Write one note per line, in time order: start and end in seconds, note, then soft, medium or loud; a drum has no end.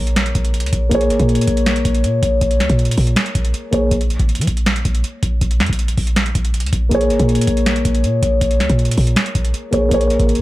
0.00 0.34 A#1 loud
0.00 0.86 A#3 medium
0.00 0.88 G#4 medium
0.00 0.89 C#5 medium
0.07 closed hi-hat medium
0.16 snare loud
0.16 closed hi-hat medium
0.26 closed hi-hat medium
0.35 0.65 A#1 loud
0.35 kick loud
0.35 closed hi-hat medium
0.45 closed hi-hat medium
0.54 closed hi-hat medium
0.60 0.72 C#2 loud
0.60 closed hi-hat medium
0.66 closed hi-hat medium
0.73 0.91 A#1 loud
0.73 kick medium
0.73 closed hi-hat medium
0.89 1.12 A#1 loud
0.89 3.68 A#3 medium
0.89 3.69 G#4 medium
0.89 kick loud
0.89 closed hi-hat loud
0.95 3.70 C#5 medium
1.01 closed hi-hat medium
1.10 1.19 G#1 loud
1.10 closed hi-hat medium
1.20 1.47 A#2 loud
1.20 kick medium
1.20 closed hi-hat medium
1.29 closed hi-hat medium
1.35 closed hi-hat medium
1.41 closed hi-hat medium
1.47 1.84 A#1 loud
1.47 kick medium
1.47 closed hi-hat medium
1.57 closed hi-hat medium
1.66 snare loud
1.66 closed hi-hat medium
1.76 closed hi-hat medium
1.85 2.05 A#1 loud
1.85 kick loud
1.85 closed hi-hat medium
1.95 closed hi-hat medium
2.04 2.22 A#2 loud
2.04 closed hi-hat medium
2.23 2.41 A#1 loud
2.23 kick medium
2.23 closed hi-hat medium
2.41 2.62 A#1 loud
2.41 kick loud
2.41 closed hi-hat loud
2.51 closed hi-hat medium
2.60 2.69 C#2 loud
2.60 snare medium
2.60 closed hi-hat medium
2.70 2.97 A#2 loud
2.70 kick medium
2.70 closed hi-hat medium
2.79 closed hi-hat soft
2.85 closed hi-hat medium
2.91 closed hi-hat medium
2.97 3.16 A#2 loud
2.97 kick medium
2.97 open hi-hat medium
3.07 closed hi-hat medium
3.16 snare loud
3.16 closed hi-hat medium
3.26 closed hi-hat medium
3.35 3.53 A#1 loud
3.35 kick loud
3.35 closed hi-hat medium
3.45 closed hi-hat medium
3.54 closed hi-hat medium
3.71 3.91 A#1 loud
3.71 3.91 A#3 medium
3.71 3.91 G#4 medium
3.71 3.92 C#5 medium
3.71 kick medium
3.71 closed hi-hat medium
3.91 4.18 A#1 loud
3.91 kick loud
3.91 closed hi-hat loud
4.01 closed hi-hat medium
4.10 closed hi-hat medium
4.19 4.40 G#1 loud
4.19 kick medium
4.19 closed hi-hat medium
4.29 closed hi-hat medium
4.35 4.47 F3 loud
4.35 closed hi-hat medium
4.41 closed hi-hat medium
4.47 4.84 A#1 loud
4.47 kick medium
4.47 closed hi-hat medium
4.57 closed hi-hat medium
4.66 snare loud
4.66 closed hi-hat medium
4.76 closed hi-hat medium
4.85 5.03 A#1 loud
4.85 kick medium
4.85 closed hi-hat medium
4.95 closed hi-hat medium
5.04 closed hi-hat medium
5.23 5.41 A#1 loud
5.23 kick loud
5.23 closed hi-hat medium
5.41 5.62 A#1 loud
5.41 kick loud
5.41 closed hi-hat loud
5.51 closed hi-hat medium
5.60 5.69 F2 loud
5.60 snare medium
5.60 closed hi-hat soft
5.66 5.97 A#1 loud
5.66 kick medium
5.66 closed hi-hat medium
5.73 closed hi-hat medium
5.79 closed hi-hat medium
5.88 closed hi-hat medium
5.97 6.34 A#1 loud
5.97 kick medium
5.97 open hi-hat medium
6.07 closed hi-hat medium
6.16 snare loud
6.16 closed hi-hat medium
6.26 closed hi-hat medium
6.35 6.65 A#1 loud
6.35 kick loud
6.35 closed hi-hat medium
6.45 closed hi-hat medium
6.54 closed hi-hat medium
6.60 6.72 C#2 loud
6.60 closed hi-hat medium
6.66 closed hi-hat medium
6.73 6.91 A#1 loud
6.73 kick medium
6.73 closed hi-hat medium
6.89 7.12 A#1 loud
6.89 9.68 A#3 medium
6.89 9.69 G#4 medium
6.89 kick loud
6.89 closed hi-hat loud
6.94 9.70 C#5 medium
7.01 closed hi-hat medium
7.10 7.19 G#1 loud
7.10 closed hi-hat medium
7.19 7.47 A#2 loud
7.19 kick medium
7.19 closed hi-hat medium
7.29 closed hi-hat medium
7.35 closed hi-hat medium
7.41 closed hi-hat medium
7.47 7.84 A#1 loud
7.47 kick medium
7.47 closed hi-hat medium
7.57 closed hi-hat medium
7.66 snare loud
7.66 closed hi-hat medium
7.76 closed hi-hat medium
7.85 8.05 A#1 loud
7.85 kick loud
7.85 closed hi-hat medium
7.95 closed hi-hat medium
8.04 8.22 A#2 loud
8.04 closed hi-hat medium
8.23 8.41 A#1 loud
8.23 kick medium
8.23 closed hi-hat medium
8.41 8.62 A#1 loud
8.41 kick loud
8.41 closed hi-hat loud
8.51 closed hi-hat medium
8.60 8.69 C#2 loud
8.60 snare medium
8.60 closed hi-hat medium
8.70 8.97 A#2 loud
8.70 kick medium
8.70 closed hi-hat medium
8.79 closed hi-hat medium
8.85 closed hi-hat medium
8.91 closed hi-hat medium
8.97 9.16 A#2 loud
8.97 kick medium
8.97 open hi-hat medium
9.07 closed hi-hat medium
9.16 snare loud
9.16 closed hi-hat medium
9.26 closed hi-hat medium
9.35 9.53 A#1 loud
9.35 kick loud
9.35 closed hi-hat medium
9.45 closed hi-hat medium
9.54 closed hi-hat medium
9.71 9.91 A#1 loud
9.71 9.87 A#3 medium
9.71 9.90 G#4 medium
9.71 9.92 C#5 medium
9.71 kick medium
9.71 closed hi-hat medium
9.89 10.18 A#1 loud
9.89 10.42 A#3 medium
9.89 10.42 G#4 medium
9.89 kick loud
9.89 closed hi-hat loud
9.94 10.42 C#5 medium
10.01 closed hi-hat medium
10.10 closed hi-hat medium
10.20 10.40 G#1 loud
10.20 kick loud
10.20 closed hi-hat medium
10.29 closed hi-hat medium
10.35 10.42 F3 loud
10.35 closed hi-hat medium